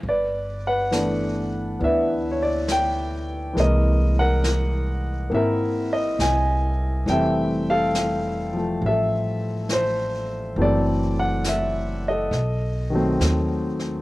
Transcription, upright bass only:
X:1
M:4/4
L:1/8
Q:"Swing" 1/4=68
K:G
V:1 name="Upright bass" clef=bass
G,,,4 D,,4 | C,,4 ^G,,,2 C,,2 | =F,,,4 A,,,4 | F,,,4 B,,,2 ^D,,2 |]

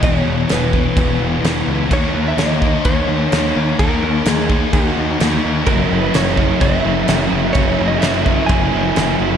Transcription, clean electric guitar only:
X:1
M:4/4
L:1/16
Q:1/4=128
K:D#phr
V:1 name="Clean electric guitar"
c4 B8 z4 | c3 e d4 c8 | A4 G4 F6 z2 | A3 B c4 e8 |
c3 d e4 g8 |]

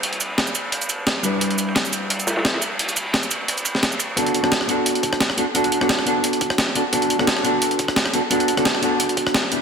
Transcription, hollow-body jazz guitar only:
X:1
M:4/4
L:1/16
Q:"Swing 16ths" 1/4=174
K:Bphr
V:1 name="Hollow-body jazz guitar"
[G,DEGB]12- [G,DEGB]2 [G,DEGB]2- | [G,DEGB]16- | [G,DEGB]12- [G,DEGB]2 z2 | [B,DFA]3 [B,DFA]3 [B,DFA]6- [B,DFA] z [B,DFA] z |
[B,DFA]3 [B,DFA]3 [B,DFA]6- [B,DFA] z [B,DFA] z | [B,DFA]3 [B,DFA]3 [B,DFA]6- [B,DFA] z [B,DFA] z | [B,DFA]3 [B,DFA]3 [B,DFA]6- [B,DFA] z [B,DEG] z |]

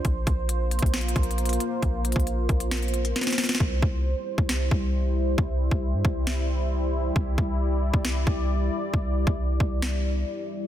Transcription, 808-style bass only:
X:1
M:4/4
L:1/16
Q:1/4=135
K:Cmix
V:1 name="808-style bass" clef=bass
B,,,2 B,,,4- B,,, B,,,3 B,,,4 z2 | B,,,3 B,,,3 B,,,6 z4 | C,,2 C,,3 z2 C,,3 C,,6 | C,,3 C,,2 G,, C,,8- C,,2 |
C,,2 C,,4- C,, C,,3 C,,4 z2 | C,,3 C,,3 C,,6 z4 |]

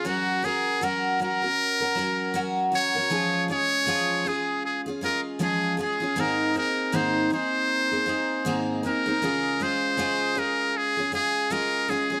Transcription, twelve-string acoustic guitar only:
X:1
M:4/4
L:1/16
Q:"Swing 16ths" 1/4=79
K:Db
V:1 name="Twelve-string acoustic guitar"
[G,DGB]2 [G,DGB]2 [G,DGB]2 [G,DGB] [DGB]2 [DGB] [G,DGB]2 [G,DGB]2 [G,DGB] [DGB] | [F,A,DFA]2 [A,DFA]2 [F,A,DFA]2 [A,DFA]3 [DFA] [A,DFA]2 [F,A,DFA]2 [A,DFA] [DFA] | [A,,E,B,CEA]2 [B,CEA]2 [A,,E,B,CEA]2 [B,CEA]3 [B,CEA] [B,CEA]2 [A,,E,B,CEA]2 [B,CEA] [B,CEA] | [D,A,DFA]2 [A,DFA]2 [D,A,DFA]2 [A,DFA]3 [DFA] [A,DFA]2 [D,A,DFA]2 [A,DFA] [DFA] |]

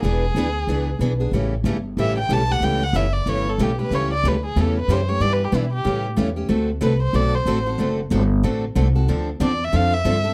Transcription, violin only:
X:1
M:4/4
L:1/8
Q:"Swing" 1/4=186
K:Amix
V:1 name="Violin"
^G6 z2 | z4 e g a f | g f e d c A G B | c d B ^G A B =c ^c |
(3d B G E G2 z3 | z2 B =c d c3 | z8 | z2 d e =f e3 |]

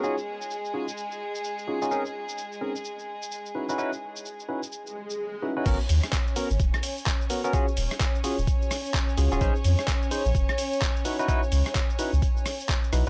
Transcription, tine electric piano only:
X:1
M:4/4
L:1/16
Q:"Swing 16ths" 1/4=128
K:G#m
V:1 name="Tine electric piano"
[CD^EFG] z4 z [CDEFG] z6 z [CDEFG] [CDEFG] | [^B,CDGA] z4 z [B,CDGA] z6 z [CDEF=B] [CDEFB] | [CDEFB] z4 z [CDEFB] z6 z [CDEFB] [CDEFB] | [B,CFA] z4 z [B,CFA] z6 z [B,CFA] [B,CFA] |
[C^EFG] z4 z [CEFG] z6 z [CEFG] [CEFG] | [CDG^B] z4 z [CDGB] z6 z [DEF=B] [DEFB] | [DEFB] z4 z [DEFB] z6 z [DEFB] z |]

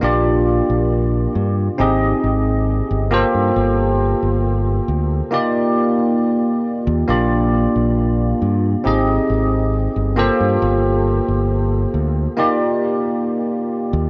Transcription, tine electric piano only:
X:1
M:4/4
L:1/8
Q:1/4=68
K:Gm
V:1 name="Tine electric piano"
[B,DFGd]4 [CEG_Ae]3 [B,FG=Ac]- | [B,FGAc]4 [B,EFGd]4 | [B,DFGd]4 [CEG_Ae]3 [B,FG=Ac]- | [B,FGAc]4 [B,EFGd]4 |]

